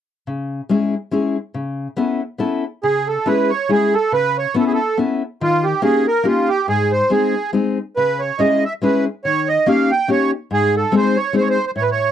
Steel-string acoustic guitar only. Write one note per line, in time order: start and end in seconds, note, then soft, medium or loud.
0.27 0.60 C#3 soft
0.69 0.93 G#3 medium
0.69 0.94 C#4 soft
0.69 0.94 E4 soft
0.69 0.94 G#4 medium
1.11 1.36 G#3 soft
1.11 1.36 C#4 soft
1.11 1.36 E4 soft
1.11 1.36 G#4 medium
1.54 1.87 C#3 medium
1.97 2.20 B3 medium
1.97 2.20 C#4 soft
1.97 2.21 E4 medium
1.97 2.21 A4 medium
2.38 2.63 B3 soft
2.38 2.63 C#4 soft
2.38 2.64 E4 soft
2.38 2.64 A4 medium
2.83 3.17 C#3 medium
3.26 3.50 G#3 medium
3.26 3.50 C#4 soft
3.26 3.50 E4 soft
3.26 3.51 G#4 medium
3.69 3.93 G#3 soft
3.69 3.93 C#4 soft
3.69 3.93 E4 soft
3.69 3.94 G#4 soft
4.12 4.45 C#3 medium
4.54 4.78 B3 medium
4.54 4.78 C#4 medium
4.54 4.79 E4 medium
4.54 4.79 A4 medium
4.97 5.21 B3 soft
4.97 5.21 C#4 soft
4.97 5.22 E4 soft
4.97 5.22 A4 medium
5.41 5.73 D#3 medium
5.82 6.05 A#3 medium
5.82 6.05 C#4 medium
5.82 6.05 D#4 soft
5.82 6.06 G4 medium
6.23 6.47 A#3 soft
6.23 6.47 C#4 soft
6.23 6.48 D#4 soft
6.23 6.48 G4 medium
6.68 7.00 G#2 medium
7.10 7.33 G#3 medium
7.10 7.33 C4 soft
7.10 7.34 D#4 soft
7.10 7.34 G#4 medium
7.53 7.77 G#3 soft
7.53 7.77 C4 soft
7.53 7.78 D#4 soft
7.53 7.78 G#4 soft
7.97 8.30 C#3 medium
8.39 8.63 G#3 medium
8.39 8.63 C#4 soft
8.39 8.63 E4 medium
8.39 8.64 G#4 medium
8.82 9.05 G#3 soft
8.82 9.06 C#4 soft
8.82 9.06 E4 soft
8.82 9.06 G#4 medium
9.25 9.57 D#3 soft
9.66 9.89 A#3 medium
9.66 9.90 C#4 medium
9.66 9.90 D#4 medium
9.66 9.90 G4 medium
10.08 10.31 A#3 soft
10.08 10.31 C#4 soft
10.08 10.31 D#4 soft
10.08 10.32 G4 medium
10.51 10.83 G#2 medium
10.92 11.15 G#3 medium
10.92 11.15 C4 medium
10.92 11.15 D#4 soft
10.92 11.15 G#4 medium
11.33 11.56 G#3 soft
11.33 11.56 C4 soft
11.33 11.57 D#4 soft
11.33 11.57 G#4 medium
11.76 12.08 A2 soft